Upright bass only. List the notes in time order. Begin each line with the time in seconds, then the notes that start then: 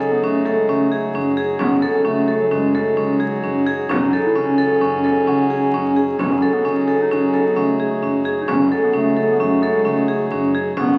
Already playing: C#2
0.23 F#1
0.68 C#2
1.14 F#1
1.60 F#1
2.05 C#2
2.51 F#1
2.98 C#2
3.43 F#1
3.89 F#1
4.36 C#2
4.81 F#1
5.28 C#2
5.74 F#1
6.19 F#1
6.64 C#2
7.11 F#1
7.57 C#2
8.03 F#1
8.49 F#1
8.94 C#2
9.40 F#1
9.86 C#2
10.31 F#1
10.77 F#1